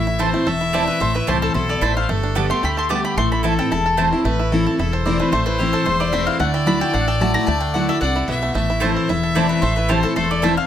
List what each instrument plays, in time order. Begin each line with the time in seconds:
Already playing: upright bass A1, steel-string acoustic guitar A2, five-string banjo A3 A4, fiddle E5
0.07 five-string banjo E4
0.19 steel-string acoustic guitar E3 A3 C4 E4, mandolin A3 E4 C5 A5, five-string banjo A4, fiddle C5
0.33 five-string banjo A3, steel-string acoustic guitar C4 E4
0.46 upright bass E1, steel-string acoustic guitar E2, five-string banjo A4, fiddle E5
0.61 five-string banjo E4
0.73 steel-string acoustic guitar E3 A3 C4 E4, mandolin A3 E4 C5 D5 A5, five-string banjo A3
0.87 five-string banjo E4, mandolin B4
1.00 upright bass A1, steel-string acoustic guitar A2, five-string banjo A3, mandolin C5
1.15 five-string banjo E4, mandolin B4
1.27 upright bass C2, steel-string acoustic guitar E3 A3 C4 E4, mandolin A3 E4 G4 C5 A5, five-string banjo E4, fiddle C5
1.42 mandolin A4, five-string banjo A4
1.54 upright bass B1, steel-string acoustic guitar B2, five-string banjo E4, fiddle A4, mandolin C5
1.69 five-string banjo A4, mandolin D5
1.81 upright bass A1, steel-string acoustic guitar A2, mandolin A3 E4 C5 E5 A5, five-string banjo A3, fiddle C5
1.97 five-string banjo E4, mandolin F5
2.09 upright bass G1, steel-string acoustic guitar G2, five-string banjo A3, fiddle A4
2.23 five-string banjo D4
2.35 steel-string acoustic guitar D3 G3 B3 G4, mandolin B3 G4 D5 A5, five-string banjo G4
2.50 five-string banjo A3, steel-string acoustic guitar B3 G4, mandolin C6
2.63 upright bass D2, steel-string acoustic guitar D3, five-string banjo G4, fiddle G4, mandolin B5
2.77 five-string banjo A4, mandolin C6
2.89 steel-string acoustic guitar D3 G3 B3 G4, five-string banjo A3, mandolin B3 G4 D5 A5 D6, fiddle G4
3.04 five-string banjo G4, mandolin B5
3.17 upright bass A1, steel-string acoustic guitar A2, five-string banjo A3, fiddle A4, mandolin C6
3.32 five-string banjo E4, mandolin B5
3.43 steel-string acoustic guitar E3 A3 C4 E4, mandolin A3 E4 C5 A5, five-string banjo E4
3.59 steel-string acoustic guitar C4 E4, five-string banjo A4, mandolin G5
3.71 upright bass E1, steel-string acoustic guitar E2, five-string banjo E4, mandolin A5
3.86 five-string banjo A4
3.97 steel-string acoustic guitar E3 A3 C4 E4, mandolin A3 E4 C5 A5, five-string banjo A3, fiddle C5
4.12 steel-string acoustic guitar C4 E4, five-string banjo E4
4.25 upright bass A1, steel-string acoustic guitar A2, five-string banjo A3, fiddle B4
4.39 five-string banjo E4
4.52 steel-string acoustic guitar E3 A3 C4 E4, five-string banjo E4, fiddle A4
4.67 steel-string acoustic guitar C4 E4, five-string banjo A4
4.78 upright bass E1, steel-string acoustic guitar E2, five-string banjo E4, fiddle A4
4.93 five-string banjo A4, fiddle C5
5.05 steel-string acoustic guitar E3 A3 C4 E4, five-string banjo E4, mandolin D5
5.19 five-string banjo A3, steel-string acoustic guitar C4 E4, mandolin B4
5.32 upright bass A1, steel-string acoustic guitar A2, five-string banjo A3, mandolin C5
5.46 five-string banjo E4, mandolin B4
5.59 steel-string acoustic guitar E3 A3 C4 E4, five-string banjo E4, mandolin G4
5.73 mandolin A4, five-string banjo A4
5.86 upright bass E1, steel-string acoustic guitar E2, five-string banjo A3, mandolin C5
6.00 five-string banjo E4, mandolin D5
6.12 steel-string acoustic guitar E3 A3 C4 E4, five-string banjo A3, mandolin E5
6.26 five-string banjo E4, mandolin F5
6.39 upright bass D2, steel-string acoustic guitar D3, five-string banjo A3, fiddle D5, mandolin F#5
6.54 five-string banjo E4, mandolin G5
6.66 steel-string acoustic guitar F#3 A3 E4 F#4, five-string banjo D4, mandolin B5
6.81 steel-string acoustic guitar E4 F#4, five-string banjo A4, mandolin G5
6.93 upright bass A1, steel-string acoustic guitar A2, five-string banjo D4, mandolin F#5
7.08 five-string banjo A4, mandolin G5
7.20 steel-string acoustic guitar F#3 A3 E4 F#4, five-string banjo E4, mandolin A5
7.34 five-string banjo A3, steel-string acoustic guitar E4 F#4, mandolin A#5
7.47 upright bass D2, steel-string acoustic guitar D3, five-string banjo A3, mandolin A5
7.60 five-string banjo D4, mandolin G5
7.74 steel-string acoustic guitar F#3 A3 E4 F#4, five-string banjo E4, mandolin F#5
7.88 steel-string acoustic guitar E4 F#4, five-string banjo A4, mandolin E5
8.01 upright bass C2, steel-string acoustic guitar C3, five-string banjo D4, fiddle D5, mandolin F#5
8.16 five-string banjo E4
8.28 upright bass B1, steel-string acoustic guitar B2, five-string banjo E3, fiddle E5
8.43 five-string banjo A3
8.54 upright bass A1, steel-string acoustic guitar A2, five-string banjo A3, fiddle E5
8.70 five-string banjo E4
8.80 steel-string acoustic guitar E3 A3 C4 E4, mandolin A3 E4 C5 A5, five-string banjo E4, fiddle C5
8.96 five-string banjo A4
9.09 upright bass E1, steel-string acoustic guitar E2, five-string banjo E4, fiddle E5
9.23 five-string banjo A4
9.35 steel-string acoustic guitar E3 A3 C4 E4, mandolin A3 E4 C5 D5 A5, five-string banjo E4
9.49 five-string banjo A3, mandolin B4
9.62 upright bass A1, steel-string acoustic guitar A2, five-string banjo A3, mandolin C5
9.76 five-string banjo E4, mandolin B4
9.89 steel-string acoustic guitar E3 A3 C4 E4, mandolin A3 E4 G4 C5 A5, five-string banjo E4, fiddle C5
10.03 steel-string acoustic guitar C4 E4, mandolin A4, five-string banjo A4
10.16 upright bass E1, steel-string acoustic guitar E2, five-string banjo A3, fiddle A4, mandolin C5
10.31 five-string banjo E4, mandolin D5
10.42 steel-string acoustic guitar E3 A3 C4 E4, mandolin A3 E4 C5 E5 A5, five-string banjo A3, fiddle C5
10.56 steel-string acoustic guitar C4 E4, five-string banjo E4, mandolin F5